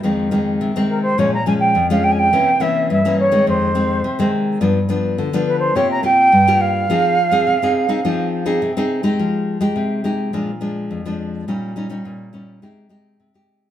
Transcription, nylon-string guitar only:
\new Staff \with { instrumentName = "Nylon-string guitar" } { \time 4/4 \key f \minor \tempo 4 = 105 << { <ees aes c'>8 <ees aes c'>8. <ees aes c'>8. <f aes des'>16 r16 <f aes des'>8 r16 <f aes des'>8. | <e bes des'>16 r16 <e bes des'>8. <e bes des'>8 <ees aes c'>8. <ees aes c'>8 r16 <ees aes c'>8. | <f b d'>16 r16 <f b d'>8. <f b d'>8. <bes f' g'>8 <bes f' g'>8 r16 <bes f' g'>8. | <c' ees' aes'>8 r16 <c' ees' aes'>8 <c' ees' aes'>8 <c' ees' aes'>16 <c' ees' aes'>8. <c' ees' aes'>8 <c' ees' aes'>8 <aes ees' g'>16~ |
<aes ees' g'>8. <aes ees' g'>8. <aes ees' g'>8 <f aes d'>16 r16 <f aes d'>8. <f aes d'>8. | <g des' ees'>8 <g des' ees'>16 <g des' ees'>8. <g des' ees'>8 <aes ees' g'>8 <aes ees' g'>8. <aes ees' g'>8. | } \\ { f,4 c4 bes,4 f,4 | c4 g,4 f,4 c4 | g,4 d4 c4 g,4 | f4 c4 f4 c4 |
f4 c4 bes,4 f,4 | bes,4 bes,4 c4 c4 | } >> }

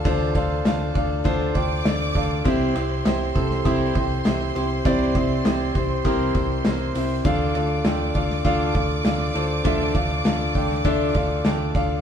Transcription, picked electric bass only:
\new Staff \with { instrumentName = "Picked electric bass" } { \clef bass \time 4/4 \key d \minor \tempo 4 = 100 d,8 d,8 d,8 d,8 d,8 d,8 d,8 d,8 | c,8 c,8 c,8 c,8 c,8 c,8 c,8 c,8 | c,8 c,8 c,8 c,8 c,8 c,8 c,8 c,8 | d,8 d,8 d,8 d,8 d,8 d,8 d,8 d,8 |
d,8 d,8 d,8 d,8 d,8 d,8 d,8 d,8 | }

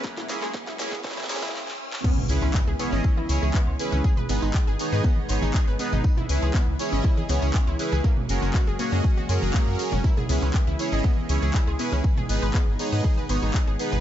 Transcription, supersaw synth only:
\new Staff \with { instrumentName = "Supersaw synth" } { \time 4/4 \key cis \dorian \tempo 4 = 120 r8 <ais cis' e' gis'>16 r8. <ais cis' e' gis'>16 r16 <ais cis' e' gis'>16 r16 <ais cis' e' gis'>16 r4 r16 | r8 <cis' e' gis' b'>16 r8. <cis' e' gis' cis''>16 <cis' e' gis' dis''>16 r8 <cis' e' gis' cis''>8 r8 <cis' e' gis' b'>16 r16 | r8 <b dis' gis' b'>16 r8. <b dis' gis' cis''>16 <b dis' gis' dis''>16 r8 <b dis' gis' cis''>8 r8 <b dis' gis' b'>16 r16 | r8 <cis' e' gis' b'>16 r8. <cis' e' gis' cis''>16 <cis' e' gis' dis''>16 r8 <cis' e' gis' cis''>8 r8 <cis' e' gis' b'>16 r16 |
r8 <cis' fis' gis' ais'>16 r8. <cis' fis' gis' cis''>16 <cis' fis' gis' dis''>16 r8 <cis' fis' gis' ais'>4 <cis' fis' gis' ais'>16 r16 | r8 <cis' e' gis' b'>16 r8. <cis' e' gis' cis''>16 <cis' e' gis' dis''>16 r8 <cis' e' gis' cis''>8 r8 <cis' e' gis' b'>16 r16 | r8 <b dis' gis' b'>16 r8. <b dis' gis' cis''>16 <b dis' gis' dis''>16 r8 <b dis' gis' cis''>8 r8 <b dis' gis' b'>16 r16 | }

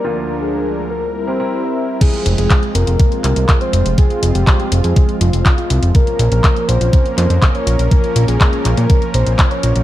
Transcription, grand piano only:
\new Staff \with { instrumentName = "Grand piano" } { \time 4/4 \key c \minor \tempo 4 = 122 <d, f bes d' f'>2 r8 <c' e' g' bes'>16 <c' e' g' bes'>4~ <c' e' g' bes'>16 | \key f \minor r1 | r1 | r1 |
r1 | }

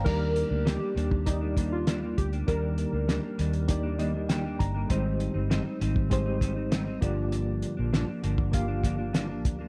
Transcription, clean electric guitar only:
\new Staff \with { instrumentName = "Clean electric guitar" } { \time 4/4 \key ees \major \tempo 4 = 99 <ees g bes d'>8. <g bes d'>16 <ees g bes d'>16 <g bes d'>16 <ees g bes d'>8. <g bes d'>16 <ees g bes d'>8 <ees g bes d'>16 <g bes d'>8 <g bes d'>16 | <ees g bes d'>8. <g bes d'>16 <ees g bes d'>16 <g bes d'>16 <ees g bes d'>8. <g bes d'>16 <ees g bes d'>16 <g bes d'>16 <ees g bes d'>16 <g bes d'>8 <g bes d'>16 | <aes, ees g c' ees'>8. <g c' ees'>16 <aes, ees g c' ees'>16 <g c' ees'>16 <ees g c' ees'>8. <g c' ees'>16 <ees g c' ees'>16 <g c' ees'>16 <aes, ees g c' ees'>16 <g c' ees'>16 <g, d f bes d'>8~ | <g, d f bes d'>8. <f bes d'>16 <g, d f bes d'>16 <f bes d'>16 <d f bes d'>8. <f bes d'>16 <d f bes d'>16 <f bes d'>16 <g, d f bes d'>16 <f bes d'>8 <f bes d'>16 | }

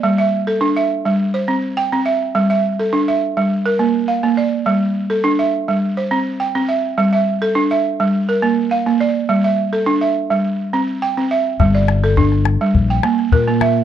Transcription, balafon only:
<<
  \new Staff \with { instrumentName = "Balafon" } { \time 4/4 \key g \dorian \tempo 4 = 104 d''16 e''8 a'8 e''8. r16 c''8. g''8 e''8~ | e''16 e''8 a'8 e''8. r16 bes'8. f''8 d''8~ | d''16 r8 a'8 e''8. r16 c''8. g''8 e''8~ | e''16 e''8 a'8 e''8. r16 bes'8. f''8 d''8~ |
d''16 e''8 a'8 e''8. r4 g''8 e''8~ | e''16 d''8 a'8. r8. g''8. bes'8 e''8 | }
  \new Staff \with { instrumentName = "Balafon" } { \time 4/4 \key g \dorian g8 r8 d'8 r16 g16 r8 c'8 r16 c'8 r16 | g8 r8 d'8 r16 g16 r8 bes8 r16 bes8 r16 | g8 r8 d'8 r16 g16 r8 c'8 r16 c'8 r16 | g8 r8 d'8 r16 g16 r8 bes8 r16 bes8 r16 |
g8 r8 d'8 r16 g16 r8 c'8 r16 c'8 r16 | g8 r8 d'8 r16 g16 r8 bes8 r16 bes8 r16 | }
>>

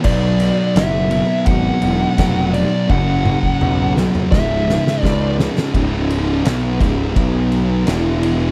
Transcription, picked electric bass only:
\new Staff \with { instrumentName = "Picked electric bass" } { \clef bass \time 4/4 \key cis \phrygian \tempo 4 = 84 b,,4 fis,,4 gis,,8 e,,8 eis,,4 | fis,,4 b,,4 cis,,4 cis,4 | cis,,4 b,,8 cis,,8 b,,4 e,,4 | }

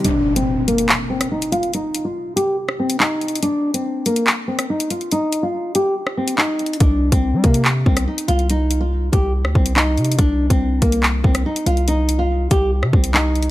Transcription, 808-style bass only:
\new Staff \with { instrumentName = "808-style bass" } { \clef bass \time 4/4 \key c \minor \tempo 4 = 142 r1 | r1 | r1 | r1 |
c,8. c,8 g16 c4 c,8 r8 c,8~ | c,4. c,8. d,16 c,4 c8 | c,8. c,8. c,4 c,8 r8 c,8~ | c,4. c,8. c16 c,4. | }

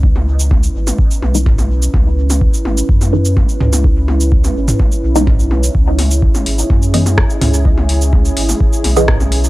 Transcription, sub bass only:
\new Staff \with { instrumentName = "Sub bass" } { \clef bass \time 4/4 \key cis \minor \tempo 4 = 126 cis,4. gis,,8 r8 b,,4. | cis,4 r8 gis,,8 fis,4 r8 cis,8~ | cis,4. gis,,8 r8 b,,4. | cis,4 r8 gis,,8 fis,4 r8 cis,8~ |
cis,4. gis,,8 r8 b,,4. | }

